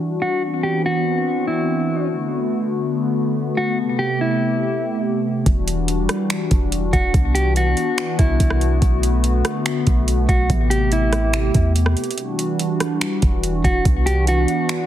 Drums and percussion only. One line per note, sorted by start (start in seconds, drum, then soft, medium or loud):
5.46 kick loud
5.46 closed hi-hat medium
5.68 closed hi-hat medium
5.88 closed hi-hat medium
6.09 cross-stick medium
6.09 closed hi-hat medium
6.30 finger snap loud
6.30 closed hi-hat medium
6.51 kick loud
6.51 closed hi-hat medium
6.72 closed hi-hat medium
6.93 kick medium
6.93 closed hi-hat medium
7.14 kick loud
7.14 closed hi-hat medium
7.35 closed hi-hat medium
7.56 closed hi-hat medium
7.77 closed hi-hat medium
7.98 finger snap loud
7.98 closed hi-hat medium
8.19 kick loud
8.19 closed hi-hat medium
8.40 kick loud
8.40 closed hi-hat medium
8.50 cross-stick medium
8.61 closed hi-hat medium
8.82 kick loud
8.82 closed hi-hat medium
9.03 closed hi-hat medium
9.24 closed hi-hat medium
9.45 cross-stick medium
9.45 closed hi-hat medium
9.66 finger snap loud
9.66 closed hi-hat medium
9.87 kick loud
9.87 closed hi-hat medium
10.08 closed hi-hat medium
10.29 kick medium
10.29 closed hi-hat medium
10.50 kick loud
10.50 closed hi-hat medium
10.71 closed hi-hat medium
10.92 closed hi-hat medium
11.13 cross-stick medium
11.13 closed hi-hat medium
11.33 finger snap loud
11.33 closed hi-hat medium
11.54 kick loud
11.54 closed hi-hat medium
11.76 closed hi-hat medium
11.86 cross-stick medium
11.97 closed hi-hat soft
12.04 closed hi-hat soft
12.11 closed hi-hat soft
12.18 closed hi-hat medium
12.39 closed hi-hat medium
12.59 closed hi-hat medium
12.80 cross-stick medium
12.80 closed hi-hat medium
13.01 finger snap loud
13.01 closed hi-hat medium
13.22 kick loud
13.22 closed hi-hat medium
13.43 closed hi-hat medium
13.64 kick medium
13.64 closed hi-hat medium
13.85 kick loud
13.85 closed hi-hat medium
14.07 closed hi-hat medium
14.27 closed hi-hat medium
14.48 closed hi-hat medium
14.69 finger snap loud
14.69 closed hi-hat medium